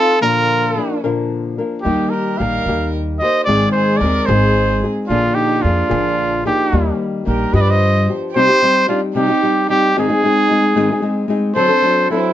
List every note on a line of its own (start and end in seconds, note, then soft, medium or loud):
0.00 0.21 C4 soft
0.00 0.21 D#4 soft
0.00 0.21 F4 medium
0.00 0.19 A4 loud
0.00 0.20 A4 soft
0.21 0.75 A#2 medium
0.21 0.75 D3 medium
0.21 0.74 F3 medium
0.21 0.77 A#3 medium
0.21 0.76 D4 medium
0.21 0.99 A#4 loud
0.21 0.78 A#4 medium
0.26 1.01 F4 medium
0.76 1.03 F3 soft
0.76 1.03 A#3 medium
0.76 1.03 D4 medium
0.76 1.03 A#4 medium
1.04 1.58 A#2 soft
1.04 1.59 D3 medium
1.04 1.58 F3 medium
1.04 1.58 A#3 medium
1.04 1.57 D4 medium
1.04 1.57 A#4 medium
1.58 1.84 F3 soft
1.58 1.84 A#3 soft
1.58 1.85 D4 soft
1.58 1.85 A#4 soft
1.81 2.03 D#2 medium
1.81 2.68 D#3 medium
1.81 2.38 G3 medium
1.81 2.40 D#4 medium
1.81 2.11 G4 medium
1.86 2.39 A#3 medium
1.86 2.14 D#4 medium
1.86 2.40 G4 medium
2.10 2.43 G4 medium
2.10 2.39 A#4 medium
2.38 2.57 A#1 medium
2.38 2.67 G3 medium
2.38 2.67 A#3 soft
2.38 2.67 D#4 medium
2.38 2.67 G4 medium
2.38 2.95 A#4 medium
2.38 2.93 F5 medium
2.66 3.19 D#2 medium
2.66 3.22 D#3 soft
2.66 3.21 G3 medium
2.66 3.22 A#3 medium
2.66 3.21 D#4 medium
2.66 3.20 G4 medium
3.18 3.48 G4 soft
3.18 3.46 C5 medium
3.18 3.44 D#5 medium
3.22 3.49 A#3 soft
3.22 3.47 D#4 soft
3.44 3.65 G#1 medium
3.44 4.01 G#2 medium
3.44 4.01 G#3 medium
3.44 3.71 D5 loud
3.48 4.02 D#3 medium
3.48 4.02 C4 medium
3.48 4.02 D#4 medium
3.48 3.73 G#4 medium
3.48 4.04 G#4 medium
3.72 4.01 G#4 medium
3.72 3.98 C5 medium
3.97 4.30 A#4 medium
3.97 4.27 D5 medium
4.01 4.19 D#2 medium
4.01 4.29 G#3 medium
4.01 4.29 C4 medium
4.01 4.29 D#4 soft
4.01 4.28 G#4 medium
4.26 4.81 G#1 loud
4.26 4.89 G#4 medium
4.26 4.88 C5 medium
4.30 4.83 G#2 medium
4.30 4.84 D#3 medium
4.30 4.83 G#3 medium
4.30 4.83 C4 medium
4.30 4.82 D#4 medium
4.30 4.83 G#4 medium
4.83 5.10 G#3 soft
4.83 5.10 C4 soft
4.83 5.10 D#4 soft
4.83 5.10 G#4 soft
5.07 5.27 A#1 medium
5.07 5.64 A#2 medium
5.07 5.64 D3 medium
5.07 5.63 F3 medium
5.07 5.63 A#3 medium
5.07 5.35 D4 medium
5.07 5.36 F4 medium
5.11 5.64 D4 medium
5.11 5.64 G#4 medium
5.33 5.64 D#4 medium
5.33 5.63 G4 medium
5.62 5.82 F2 medium
5.62 5.89 F3 medium
5.62 5.88 A#3 medium
5.62 6.44 D4 medium
5.62 5.89 D4 soft
5.62 6.44 F4 medium
5.62 5.88 G#4 medium
5.89 6.44 A#1 loud
5.89 6.44 A#2 medium
5.89 6.44 D3 medium
5.89 6.44 F3 medium
5.89 6.44 A#3 medium
5.89 6.44 D4 medium
5.89 6.44 G#4 medium
6.45 6.72 F3 soft
6.45 6.71 A#3 soft
6.45 6.72 D4 soft
6.45 6.95 D#4 medium
6.45 6.96 G4 medium
6.45 6.72 G#4 soft
6.72 6.90 D#2 medium
6.72 7.26 D#3 medium
6.72 7.25 G3 medium
6.72 7.24 A#3 medium
6.72 7.25 D#4 medium
6.72 7.27 G4 medium
7.25 7.44 A#1 medium
7.25 7.53 G3 soft
7.25 7.53 A#3 medium
7.25 7.53 D#4 medium
7.25 7.57 G4 medium
7.25 7.52 G4 medium
7.25 7.56 A#4 medium
7.53 8.06 G2 medium
7.53 8.08 G2 medium
7.53 8.08 D3 soft
7.53 8.08 F3 soft
7.53 8.07 G4 medium
7.53 7.59 B4 medium
7.53 7.62 D#5 medium
7.59 7.69 B4 medium
7.59 7.71 D5 medium
7.67 8.14 C5 medium
7.67 8.15 D#5 medium
8.09 8.36 F3 soft
8.09 8.35 B3 soft
8.09 8.35 D4 soft
8.09 8.35 G4 soft
8.33 8.48 C3 medium
8.33 8.49 C4 medium
8.33 8.84 G4 medium
8.33 8.85 C5 loud
8.37 8.49 G3 medium
8.37 8.48 D#4 medium
8.37 8.47 G4 medium
8.49 8.61 C4 soft
8.49 8.61 D#4 medium
8.49 8.62 G4 medium
8.62 8.87 G3 medium
8.62 8.88 C4 medium
8.62 8.88 D#4 medium
8.62 8.89 G4 medium
8.88 9.14 G3 medium
8.88 9.15 C4 medium
8.88 9.00 D4 medium
8.88 9.15 D#4 medium
8.88 9.00 F4 medium
8.88 9.16 G4 medium
9.14 9.29 C3 medium
9.14 9.29 G3 medium
9.14 9.29 C4 medium
9.14 9.65 D#4 medium
9.14 9.28 D#4 medium
9.14 9.66 G4 medium
9.14 9.28 G4 medium
9.29 9.42 C4 soft
9.29 9.43 D#4 soft
9.29 9.42 G4 medium
9.43 9.69 G3 soft
9.43 9.69 C4 soft
9.43 9.69 D#4 medium
9.43 9.70 G4 medium
9.68 9.96 G3 soft
9.68 9.96 C4 medium
9.68 9.94 D#4 medium
9.68 9.97 D#4 medium
9.68 9.94 G4 loud
9.68 9.97 G4 medium
9.97 10.10 G#2 medium
9.97 10.10 D#3 medium
9.97 10.10 G#3 medium
9.97 10.09 C4 medium
9.97 11.27 D#4 medium
9.97 10.08 D#4 medium
9.97 10.08 G#4 medium
9.97 11.27 G#4 loud
10.09 10.23 G#3 soft
10.09 10.23 C4 soft
10.09 10.23 D#4 medium
10.09 10.23 G#4 medium
10.24 10.50 G#3 medium
10.24 10.49 C4 medium
10.24 10.50 D#4 medium
10.24 10.51 G#4 medium
10.50 10.75 G#3 medium
10.50 10.76 C4 medium
10.50 10.75 D#4 medium
10.50 10.76 G#4 medium
10.75 10.89 G#2 medium
10.75 10.90 D#3 medium
10.75 10.90 G#3 medium
10.75 10.90 C4 medium
10.75 10.90 D#4 medium
10.75 10.90 G#4 loud
10.92 11.01 G#3 medium
10.92 11.02 C4 soft
10.92 11.01 D#4 medium
10.92 11.02 G#4 medium
11.02 11.27 G#3 medium
11.02 11.28 C4 medium
11.02 11.29 D#4 medium
11.02 11.29 G#4 medium
11.28 11.55 G#3 medium
11.28 11.55 C4 medium
11.28 11.56 D#4 medium
11.28 11.56 G#4 medium
11.56 11.70 D3 medium
11.56 11.70 F#3 medium
11.56 11.69 C4 medium
11.56 11.69 D4 medium
11.56 11.67 A4 medium
11.56 12.06 A4 medium
11.56 12.06 C5 loud
11.68 11.82 C4 medium
11.68 11.82 D4 medium
11.68 11.83 A4 medium
11.82 12.09 F#3 medium
11.82 12.10 C4 medium
11.82 12.10 D4 medium
11.82 12.10 A4 medium
12.10 12.33 F#3 medium
12.10 12.33 C4 medium
12.10 12.33 D4 medium
12.10 12.33 E4 medium
12.10 12.33 A4 medium